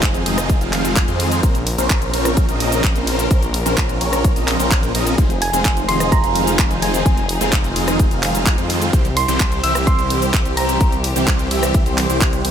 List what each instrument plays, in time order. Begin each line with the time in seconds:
Already playing: detuned saw bass F1, supersaw synth D#3 G#3 C4 F4 C5, string section F3 D#4 G#4
0.03 kick, clap, closed hi-hat, shaker
0.14 closed hi-hat, shaker
0.26 detuned saw bass F1, supersaw synth D#3 G#3 C4 F4 D#5, open hi-hat, ride
0.38 cross-stick, closed hi-hat, shaker
0.50 kick, closed hi-hat, shaker
0.61 detuned saw bass F1, supersaw synth D#3 G#3 C4 F4 F5, closed hi-hat, shaker
0.73 clap, open hi-hat, ride
0.85 closed hi-hat, shaker
0.96 kick, clap, closed hi-hat, shaker
1.08 detuned saw bass F2, supersaw synth D#3 G#3 C4 F4 C5, closed hi-hat, shaker
1.20 open hi-hat, ride
1.32 closed hi-hat, shaker
1.43 detuned saw bass A#1, string section C#3 A#4, supersaw synth F3 C4 C#4 A#4 C5, kick, closed hi-hat, shaker
1.55 closed hi-hat, shaker
1.67 open hi-hat, ride
1.78 detuned saw bass A#1, supersaw synth F3 C4 C#4 A#4 C5, closed hi-hat, shaker
1.90 kick, clap, closed hi-hat, shaker
2.02 closed hi-hat, shaker
2.14 detuned saw bass A#1, supersaw synth F3 C4 C#4 A#4 C#5, open hi-hat, ride
2.25 cross-stick, closed hi-hat, shaker
2.37 kick, closed hi-hat, shaker
2.49 detuned saw bass A#1, supersaw synth F3 C4 C#4 A#4 D#5, closed hi-hat, shaker
2.60 open hi-hat, ride
2.72 open hi-hat, shaker
2.84 kick, clap, closed hi-hat, shaker
2.96 detuned saw bass A#1, supersaw synth F3 C4 C#4 A#4 C5, closed hi-hat, shaker
3.07 open hi-hat, ride
3.19 closed hi-hat, shaker
3.31 detuned saw bass A#1, supersaw synth F3 C4 C#4 A#4 C5, string section A#3, kick, closed hi-hat, shaker
3.43 closed hi-hat, shaker
3.54 open hi-hat, ride
3.66 detuned saw bass A#1, supersaw synth F3 C4 C#4 A#4 C5, closed hi-hat, shaker
3.78 kick, clap, closed hi-hat, shaker
3.89 closed hi-hat, shaker
4.01 detuned saw bass A#1, supersaw synth F3 C4 C#4 A#4 C#5, open hi-hat, ride
4.13 cross-stick, closed hi-hat, shaker
4.25 kick, closed hi-hat, shaker
4.36 detuned saw bass A#1, supersaw synth F3 C4 C#4 A#4 D#5, open hi-hat, shaker
4.48 clap, open hi-hat, ride
4.60 detuned saw bass A#1, supersaw synth F3 C4 C#4 A#4 C5, closed hi-hat, shaker
4.71 kick, clap, closed hi-hat, shaker
4.83 closed hi-hat, shaker
4.95 detuned saw bass A#1, supersaw synth F3 C4 C#4 A#4 D#5, open hi-hat, ride
5.07 closed hi-hat, shaker
5.18 detuned saw bass F1, supersaw synth D#3 G#3 C4 F4 C5, string section F3 D#4 G#4, kick, closed hi-hat, shaker
5.30 closed hi-hat, shaker
5.42 synth pluck G#5, open hi-hat, ride
5.53 detuned saw bass F1, supersaw synth D#3 G#3 C4 F4 C5, closed hi-hat, shaker
5.65 kick, clap, closed hi-hat, shaker
5.77 closed hi-hat, shaker
5.88 detuned saw bass F1, supersaw synth D#3 G#3 C4 F4 D#5, synth pluck C6, open hi-hat, ride
6.00 cross-stick, closed hi-hat, shaker
6.12 synth pluck A#5, kick, closed hi-hat, shaker
6.24 detuned saw bass F1, supersaw synth D#3 G#3 C4 F4 F5, closed hi-hat, shaker
6.35 open hi-hat, ride
6.47 open hi-hat, shaker
6.59 kick, clap, closed hi-hat, shaker
6.70 detuned saw bass F1, supersaw synth D#3 G#3 C4 F4 C5, closed hi-hat, shaker
6.82 synth pluck G#5, open hi-hat, ride
6.94 closed hi-hat, shaker
7.06 detuned saw bass F1, supersaw synth D#3 G#3 C4 F4 C5, kick, closed hi-hat, shaker
7.18 closed hi-hat, shaker
7.29 open hi-hat, ride
7.41 detuned saw bass F1, supersaw synth D#3 G#3 C4 F4 C5, closed hi-hat, shaker
7.53 kick, clap, closed hi-hat, shaker
7.64 closed hi-hat, shaker
7.76 detuned saw bass F1, supersaw synth D#3 G#3 C4 F4 D#5, open hi-hat, ride
7.88 cross-stick, closed hi-hat, shaker
7.99 kick, closed hi-hat, shaker
8.11 detuned saw bass F1, supersaw synth D#3 G#3 C4 F4 F5, closed hi-hat, shaker
8.23 clap, open hi-hat, ride
8.35 closed hi-hat, shaker
8.46 kick, clap, closed hi-hat, shaker
8.58 detuned saw bass F2, supersaw synth D#3 G#3 C4 F4 C5, closed hi-hat, shaker
8.70 open hi-hat, ride
8.82 closed hi-hat, shaker
8.93 detuned saw bass C2, supersaw synth E3 G3 C4 G4 C5, string section E3 C4 G4, kick, closed hi-hat, shaker
9.05 closed hi-hat, shaker
9.17 synth pluck C6, open hi-hat, ride
9.28 detuned saw bass C2, supersaw synth E3 G3 C4 G4 C5, closed hi-hat, shaker
9.40 kick, clap, closed hi-hat, shaker
9.52 closed hi-hat, shaker
9.63 detuned saw bass C2, supersaw synth E3 G3 C4 G4 E5, synth pluck E6, open hi-hat, ride
9.75 cross-stick, closed hi-hat, shaker
9.87 synth pluck C6, kick, closed hi-hat, shaker
9.99 detuned saw bass C2, supersaw synth E3 G3 C4 G4 C5, closed hi-hat, shaker
10.10 open hi-hat, ride
10.22 open hi-hat, shaker
10.34 kick, clap, closed hi-hat, shaker
10.45 detuned saw bass C2, supersaw synth E3 G3 C4 G4 C5, closed hi-hat, shaker
10.57 synth pluck A#5, open hi-hat, ride
10.69 closed hi-hat, shaker
10.81 detuned saw bass C2, supersaw synth E3 G3 C4 G4 C5, kick, closed hi-hat, shaker
10.92 closed hi-hat, shaker
11.04 open hi-hat, ride
11.16 detuned saw bass C2, supersaw synth E3 G3 C4 G4 C5, closed hi-hat, shaker
11.28 kick, clap, closed hi-hat, shaker
11.39 closed hi-hat, shaker
11.51 detuned saw bass C2, supersaw synth E3 G3 C4 G4 E5, open hi-hat, ride
11.63 cross-stick, closed hi-hat, shaker
11.74 kick, closed hi-hat, shaker
11.86 detuned saw bass C2, supersaw synth E3 G3 C4 G4 C5, closed hi-hat, shaker
11.98 clap, open hi-hat, ride
12.10 detuned saw bass C2, supersaw synth E3 G3 C4 G4 C5, closed hi-hat, shaker
12.21 kick, clap, closed hi-hat, shaker
12.33 closed hi-hat, shaker
12.45 detuned saw bass C2, supersaw synth E3 G3 C4 G4 C5, open hi-hat, ride